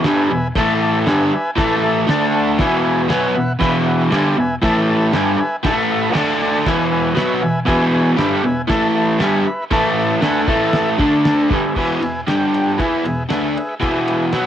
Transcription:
0.04 overdriven electric guitar G2 D3 G3, transistor combo organ B4 E5 G#5, snare, crash
0.29 overdriven electric guitar E2 B2, transistor combo organ B4 E5 G#5
0.55 overdriven electric guitar A2 E3 A3, transistor combo organ A4 E5 A5, kick, snare, crash
0.81 transistor combo organ A4 E5 A5
1.06 overdriven electric guitar G2 D3 G3, transistor combo organ B4 E5 G#5, snare, crash
1.32 transistor combo organ B4 E5 G#5, muted overdriven electric guitar stroke
1.56 overdriven electric guitar A2 E3 A3, transistor combo organ A4 E5 A5, kick, snare, crash
1.83 transistor combo organ A4 E5 A5
2.07 overdriven electric guitar D3 A3 D4, transistor combo organ A4 D5 A5, snare, crash
2.35 transistor combo organ A4 D5 A5
2.58 overdriven electric guitar E2 B2 E3, transistor combo organ B4 E5 G#5, kick, snare, crash
2.84 transistor combo organ B4 E5 G#5
3.09 overdriven electric guitar B2 F#3 B3, transistor combo organ B4 E5 G#5, snare, crash
3.34 overdriven electric guitar E2 B2, transistor combo organ B4 E5 F#5
3.59 overdriven electric guitar E2 B2 E3, transistor combo organ B4 E5 B5, kick, snare, crash
3.85 transistor combo organ B4 E5 F#5
4.10 overdriven electric guitar G2 D3 G3, transistor combo organ B4 E5 G#5, snare, crash
4.36 overdriven electric guitar E2 B2, transistor combo organ B4 E5 G#5
4.62 overdriven electric guitar A2 E3 A3, transistor combo organ A4 E5 A5, kick, snare, crash
4.89 transistor combo organ A4 E5 A5
5.12 overdriven electric guitar G2 D3 G3, transistor combo organ B4 E5 G#5, snare, crash
5.38 transistor combo organ B4 E5 G#5, muted overdriven electric guitar stroke
5.63 overdriven electric guitar A2 E3 A3, transistor combo organ A4 E5 A5, kick, snare, crash
5.91 transistor combo organ A4 E5 B5
6.13 overdriven electric guitar D3 A3 D4, transistor combo organ A4 D5, snare, crash
6.18 transistor combo organ A5
6.42 transistor combo organ A4 D5 A5
6.66 overdriven electric guitar E2 B2 E3, transistor combo organ B4 E5 G#5, kick, snare, crash
6.91 transistor combo organ B4 E5 G#5
7.15 overdriven electric guitar B2 F#3 B3, transistor combo organ B4 E5 B5, snare, crash
7.41 overdriven electric guitar E2 B2, transistor combo organ B4 E5 G#5
7.65 overdriven electric guitar E2 B2 E3, transistor combo organ B4 E5 G#5, kick, snare, crash
7.92 transistor combo organ B4 E5 G#5
8.17 overdriven electric guitar G2 D3 G3, transistor combo organ B4 E5 B5, snare, crash
8.44 overdriven electric guitar E2 B2, transistor combo organ B4 E5 G#5
8.67 overdriven electric guitar A2 E3 A3, transistor combo organ A4 E5 A5, kick, snare, crash
8.94 transistor combo organ A4 E5 A5
9.19 overdriven electric guitar G2 D3 G3, transistor combo organ B4 E5, snare, crash
9.23 transistor combo organ G#5
9.45 transistor combo organ B4 E5 B5, muted overdriven electric guitar stroke
9.71 overdriven electric guitar A2 E3 A3, transistor combo organ A4 E5 A5, kick, snare, crash
9.97 transistor combo organ A4 E5 A5
10.21 overdriven electric guitar D3 A3 D4, transistor combo organ B4 E5 G#5, snare, crash
10.47 overdriven electric guitar A2 E3 A3, transistor combo organ A4 E5 A5, kick
10.73 snare, crash
10.98 overdriven electric guitar D3 A3 D4, transistor combo organ A4 D5 A5, kick
11.25 snare, crash
11.49 overdriven electric guitar G2 D3 G3, transistor combo organ B4 E5, kick
11.54 transistor combo organ G#5
11.76 overdriven electric guitar E2 B2 E3, transistor combo organ B4 E5 G#5, kick, crash
12.01 overdriven electric guitar E2 B2, transistor combo organ B4 E5 G#5, ride
12.27 overdriven electric guitar G2 D3 G3, transistor combo organ G4 D5 G5, snare, ride
12.53 transistor combo organ G4 D5 G5, ride
12.78 overdriven electric guitar E3 B3 E4, transistor combo organ G#4 B4 E5, kick, ride
13.05 overdriven electric guitar E2 B2, transistor combo organ G#4 B4 E5, ride
13.29 overdriven electric guitar D3 A3 D4, transistor combo organ G#4 B4 E5, snare, ride
13.55 transistor combo organ G#4 B4 E5, muted overdriven electric guitar stroke, ride
13.80 overdriven electric guitar E2 B2 E3, transistor combo organ G#4 B4 E5, kick, ride
14.07 transistor combo organ G#4 B4 E5, ride
14.32 overdriven electric guitar B2 F#3 B3, transistor combo organ F#4 B4 F#5, snare, ride

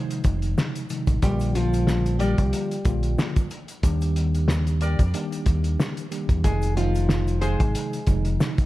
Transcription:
Already playing: tine electric piano C3 D#3 F3 G#3 D#4
0.11 closed hi-hat, shaker
0.24 fingered electric bass F1, kick, closed hi-hat, shaker
0.42 closed hi-hat, shaker
0.58 snare, shaker
0.76 closed hi-hat, shaker
0.89 tine electric piano C3 D#3 F3 G#3 D#4, closed hi-hat, shaker
1.07 fingered electric bass A1, kick, closed hi-hat, shaker
1.22 fingered electric bass A#1, tine electric piano D3 F3 G3 A#3 F4, nylon-string guitar G3 G4, kick, closed hi-hat, shaker
1.40 closed hi-hat, shaker
1.55 tine electric piano D3 F3 G3 A#3 F4, nylon-string guitar F3 F4, closed hi-hat, shaker
1.73 closed hi-hat, shaker
1.87 snare, shaker
2.06 closed hi-hat, shaker
2.19 nylon-string guitar G3 G4, horn section G4 A#4 D5, closed hi-hat, shaker
2.38 fingered electric bass C2, kick, closed hi-hat, shaker
2.53 closed hi-hat, shaker
2.71 closed hi-hat, shaker
2.85 fingered electric bass A#1, tine electric piano D3 F3 G3 A#3 F4, kick, closed hi-hat, shaker
3.03 closed hi-hat, shaker
3.19 snare, shaker
3.36 kick, closed hi-hat, shaker
3.50 closed hi-hat, shaker
3.68 closed hi-hat, shaker
3.83 fingered electric bass D#2, tine electric piano D#3 G3 A#3 D4 G4, kick, closed hi-hat, shaker
4.01 closed hi-hat, shaker
4.16 closed hi-hat, shaker
4.34 closed hi-hat, shaker
4.48 snare, shaker
4.67 closed hi-hat, shaker
4.81 horn section G4 A#4 D5, closed hi-hat, shaker
4.99 fingered electric bass F2, kick, closed hi-hat, shaker
5.14 tine electric piano D#3 G3 A#3 D4 G4, closed hi-hat, shaker
5.32 closed hi-hat, shaker
5.46 fingered electric bass D#2, kick, closed hi-hat, shaker
5.64 closed hi-hat, shaker
5.80 snare, shaker
5.97 closed hi-hat, shaker
6.11 tine electric piano D#3 G3 A#3 D4 G4, closed hi-hat, shaker
6.29 fingered electric bass E2, kick, closed hi-hat, shaker
6.44 fingered electric bass F1, tine electric piano C3 D#3 F3 G#3 D#4, nylon-string guitar G#3 G#4, kick, closed hi-hat, shaker
6.62 closed hi-hat, shaker
6.76 tine electric piano C3 D#3 F3 G#3 D#4, nylon-string guitar F3 F4, closed hi-hat, shaker
6.95 closed hi-hat, shaker
7.09 snare, shaker
7.27 closed hi-hat, shaker
7.42 nylon-string guitar G#3 G#4, horn section F4 G#4 C5, closed hi-hat, shaker
7.60 fingered electric bass G#1, kick, closed hi-hat, shaker
7.75 closed hi-hat, shaker
7.93 closed hi-hat, shaker
8.07 fingered electric bass F1, tine electric piano C3 D#3 F3 G#3 D#4, kick, closed hi-hat, shaker
8.25 closed hi-hat, shaker
8.40 snare, shaker
8.58 kick, closed hi-hat, shaker

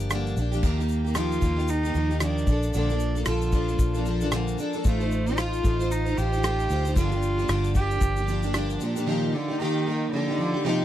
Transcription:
Already playing: fingered electric bass G1, cello G3, steel-string acoustic guitar A#3 D4 G4
0.10 steel-string acoustic guitar G2 D3 F3 A#3 D4 G4, cross-stick, shaker
0.27 shaker
0.36 fingered electric bass A#1, steel-string acoustic guitar F3 A#3 D4 G4, shaker
0.52 steel-string acoustic guitar F3 A#3 D4 G4, shaker
0.63 fingered electric bass D#2, steel-string acoustic guitar D#3 F3 A#3 D#4 G4, cello A#3, kick, crash, shaker
0.78 steel-string acoustic guitar A#3 D#4 G4, shaker
0.89 shaker
0.91 shaker
1.04 steel-string acoustic guitar A#3 D#4 G4, shaker
1.15 steel-string acoustic guitar D#3 F3 A#3, cross-stick, shaker
1.16 steel-string acoustic guitar D#4 G4, cello F4, shaker
1.32 shaker
1.41 fingered electric bass D#2, steel-string acoustic guitar F3 A#3 D#4, kick, shaker
1.43 steel-string acoustic guitar G4, shaker
1.57 steel-string acoustic guitar A#3 D#4 G4, shaker
1.68 cello D#4, shaker
1.70 shaker
1.83 steel-string acoustic guitar A#3 D#4 G4, shaker
1.93 fingered electric bass D#2, steel-string acoustic guitar F3 A#3 D#4 G4, shaker
2.09 steel-string acoustic guitar A#3 D#4 G4, shaker
2.20 steel-string acoustic guitar D#3 F3 A#3 D#4 G4, cello D4, cross-stick, shaker
2.38 shaker
2.47 fingered electric bass A#1, steel-string acoustic guitar F3 A#3 D4 A4, kick, shaker
2.63 shaker
2.73 fingered electric bass A#1, steel-string acoustic guitar A#2 D3 F3 A#3 D4 A4, cello D4, shaker
2.89 steel-string acoustic guitar F3 A#3 D4 A4, shaker
2.99 shaker
3.15 steel-string acoustic guitar F3 A#3 D4 A4, shaker
3.25 fingered electric bass A#1, steel-string acoustic guitar A#2 D3 F3 A#3 D4 A4, cello F4, cross-stick, shaker
3.42 shaker
3.52 steel-string acoustic guitar F3 A#3 D4 A4, kick, shaker
3.68 steel-string acoustic guitar F3 A#3 D4 A4, shaker
3.79 fingered electric bass A#1, kick, shaker
3.94 steel-string acoustic guitar F3 A#3 D4 A4, shaker
4.05 steel-string acoustic guitar F3 A#3 D4 A4, shaker
4.21 steel-string acoustic guitar F3 A#3 D4 A4, shaker
4.31 steel-string acoustic guitar A#2 D3 F3 A#3 D4 A4, cross-stick, shaker
4.48 shaker
4.58 steel-string acoustic guitar F3 A#3 D4 A4, shaker
4.73 steel-string acoustic guitar A#3 D4 A4, shaker
4.78 steel-string acoustic guitar F3
4.84 fingered electric bass A1, steel-string acoustic guitar A3 D#4 F4 C5, cello A3, kick, shaker
5.00 steel-string acoustic guitar D#4 F4 C5, shaker
5.11 shaker
5.26 steel-string acoustic guitar D#4 F4 C5, shaker
5.37 steel-string acoustic guitar A3 D#4 F4 C5, cello F4, cross-stick, shaker
5.53 shaker
5.63 fingered electric bass A1, steel-string acoustic guitar A3 D#4 F4 C5, kick, shaker
5.79 steel-string acoustic guitar D#4 F4 C5, shaker
5.91 cello D#4, shaker
6.06 steel-string acoustic guitar D#4 F4 C5, shaker
6.16 fingered electric bass A1, steel-string acoustic guitar A3 D#4 F4 C5, cello G4, shaker
6.32 steel-string acoustic guitar D#4 F4 C5, shaker
6.43 steel-string acoustic guitar A3 D#4 F4 C5, cross-stick, shaker
6.60 cross-stick, shaker
6.70 fingered electric bass D2, steel-string acoustic guitar A3 D#4 F4 C5, shaker
6.85 steel-string acoustic guitar F4 C5, shaker
6.87 steel-string acoustic guitar D#4, shaker
6.95 fingered electric bass G1, steel-string acoustic guitar G2 D3 F3 A#3 D4 G4, cello F4, kick, shaker
7.11 steel-string acoustic guitar F3 A#3 D4 G4, shaker
7.22 shaker
7.38 steel-string acoustic guitar F3 A#3 D4 G4, shaker
7.49 fingered electric bass G1, steel-string acoustic guitar G2 D3 F3 A#3 D4 G4, cross-stick, shaker
7.64 shaker
7.74 steel-string acoustic guitar F3 A#3 D4 G4, cello G4, kick, shaker
7.91 steel-string acoustic guitar F3 A#3 D4 G4, shaker
8.01 fingered electric bass G1, kick, shaker
8.16 steel-string acoustic guitar F3 A#3 D4 G4, shaker
8.27 steel-string acoustic guitar F3 A#3 D4 G4, shaker
8.43 steel-string acoustic guitar F3 A#3 D4 G4, shaker
8.53 steel-string acoustic guitar G2 D3 F3 A#3 D4 G4, cross-stick, shaker
8.70 shaker
8.79 cello A#2, steel-string acoustic guitar F3 A#3 D4 G4, shaker
8.95 steel-string acoustic guitar F3 A#3 D4 G4, shaker
9.06 steel-string acoustic guitar D#3 F3 A#3 D#4 G4
9.32 cello D3, steel-string acoustic guitar F3 A#3 D#4 G4
9.48 steel-string acoustic guitar A#3 D#4 G4
9.60 steel-string acoustic guitar D#3 F3 A#3 D#4 G4, cello D#3
9.86 steel-string acoustic guitar F3 A#3 D#4 G4
10.12 cello D3, steel-string acoustic guitar F3 A#3 D#4 G4
10.28 steel-string acoustic guitar A#3 D#4 G4
10.38 steel-string acoustic guitar F3 A#3 D#4 G4
10.54 steel-string acoustic guitar A#3 D#4 G4
10.64 cello C3, steel-string acoustic guitar D#3 F3 A#3 D#4 G4

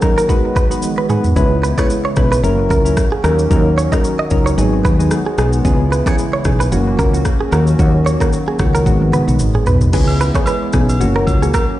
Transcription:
Already playing: analog synth pad D#3 F#3 A#3 C#4 F#4
0.02 synth keys F#3 C#4 D#4 A#4, kick, cross-stick, shaker
0.18 clean electric guitar A#4, shaker
0.28 synth keys G#3 D#4 F#4 B4, analog synth pad G#3, kick, shaker
0.56 clean electric guitar B4, kick, shaker
0.70 synth keys G#3 D#4 F#4 B4, shaker
0.82 high tom, shaker
0.98 clean electric guitar B4
1.09 synth keys G#3 D#4 F#4 B4, clean electric guitar G#4, mid tom, shaker
1.24 floor tom, shaker
1.36 fretless electric bass C#2, synth keys G#3 C#4 E4 B4, analog synth pad G#3 E4, kick, shaker
1.63 clean electric guitar B4, shaker
1.77 synth keys G#3 C#4 E4 B4, clean electric guitar C#5, kick, cross-stick, shaker
1.90 shaker
2.05 clean electric guitar C#5
2.16 fretless electric bass B1, synth keys G#3 C#4 E4 B4, kick, cross-stick, shaker
2.32 clean electric guitar B4, shaker
2.43 fretless electric bass F#1, synth keys F#3 C#4 E4 A#4, analog synth pad F#3 A#3 C#4 F#4, shaker
2.70 fretless electric bass C#2, clean electric guitar A#4, kick, shaker
2.85 synth keys F#3 C#4 E4 A#4, shaker
2.97 kick, cross-stick, shaker
3.12 clean electric guitar G#4
3.23 fretless electric bass D#2, analog synth pad D#3, synth keys F#3 C#4 D#4 A#4, clean electric guitar A#4, cross-stick, shaker
3.39 shaker
3.50 fretless electric bass D#2, synth keys F#3 C#4 D#4 A#4, kick, shaker
3.78 clean electric guitar C#5, shaker
3.92 synth keys F#3 C#4 D#4 A#4, clean electric guitar D#5, kick, cross-stick, shaker
4.04 shaker
4.19 clean electric guitar D#5
4.30 fretless electric bass C#2, synth keys F#3 C#4 D#4 A#4, kick, shaker
4.46 clean electric guitar C#5, shaker
4.57 fretless electric bass G#1, synth keys F#3 B3 D#4 G#4, analog synth pad G#3 B3, shaker
4.85 fretless electric bass D#2, clean electric guitar B4, kick, shaker
4.99 synth keys F#3 B3 D#4 G#4, shaker
5.11 cross-stick, shaker
5.26 clean electric guitar G#4
5.38 fretless electric bass B1, synth keys F#3 B3 D#4 G#4, clean electric guitar G#4, cross-stick, shaker
5.53 shaker
5.65 fretless electric bass C#2, analog synth pad C#3 E3 E4, synth keys E3 B3 C#4 G#4, kick, shaker
5.92 clean electric guitar B4, shaker
6.06 synth keys E3 B3 C#4 G#4, clean electric guitar C#5, kick, cross-stick, shaker
6.18 shaker
6.33 clean electric guitar C#5
6.45 fretless electric bass B1, synth keys E3 B3 C#4 G#4, kick, cross-stick, shaker
6.60 clean electric guitar B4, shaker
6.72 fretless electric bass F#1, synth keys E3 A#3 C#4 F#4, analog synth pad F#3 A#3 C#4 F#4, shaker
6.99 fretless electric bass C#2, clean electric guitar A#4, kick, shaker
7.13 synth keys E3 A#3 C#4 F#4, shaker
7.25 kick, cross-stick, shaker
7.41 clean electric guitar G#4
7.52 fretless electric bass D#2, synth keys D#3 A#3 C#4 F#4, analog synth pad D#3 F#3 A#3, clean electric guitar A#4, cross-stick, shaker
7.67 shaker
7.79 fretless electric bass D#2, synth keys D#3 A#3 C#4 F#4, kick, shaker
8.06 clean electric guitar C#5, shaker
8.20 synth keys D#3 A#3 C#4 F#4, clean electric guitar A#4, kick, cross-stick, shaker
8.33 shaker
8.48 clean electric guitar G#4
8.59 fretless electric bass C#2, synth keys D#3 A#3 C#4 F#4, kick, cross-stick, shaker
8.75 clean electric guitar A#4, shaker
8.86 fretless electric bass G#1, synth keys D#3 G#3 B3 F#4, analog synth pad G#3 B3, kick, high tom, shaker
9.01 high tom
9.13 clean electric guitar B4, mid tom, shaker
9.27 fretless electric bass B1, synth keys D#3 G#3 B3 F#4, mid tom, shaker
9.39 fretless electric bass G#1, mid tom, shaker
9.54 clean electric guitar G#4, mid tom
9.66 fretless electric bass B1, clean electric guitar B4, floor tom, shaker
9.81 floor tom, shaker
9.93 fretless electric bass C#2, analog synth pad C#3 E3 G#3 B3 E4, synth keys E3 B3 C#4 G#4, clean electric guitar G#4, kick, crash, shaker
10.08 high agogo
10.21 clean electric guitar B4, shaker
10.34 synth keys E3 B3 C#4 G#4, clean electric guitar C#5, kick, cross-stick, shaker
10.46 clean electric guitar B4, high agogo, shaker
10.73 fretless electric bass B1, synth keys E3 B3 C#4 G#4, kick, cross-stick, shaker
10.89 high agogo, shaker
11.00 fretless electric bass F#1, synth keys E3 A#3 C#4 F#4, analog synth pad F#3 A#3 C#4, shaker
11.16 clean electric guitar A#4
11.27 fretless electric bass C#2, kick, high agogo, shaker
11.42 synth keys E3 A#3 C#4 F#4, clean electric guitar G#4, shaker
11.54 clean electric guitar A#4, kick, cross-stick, high agogo, shaker

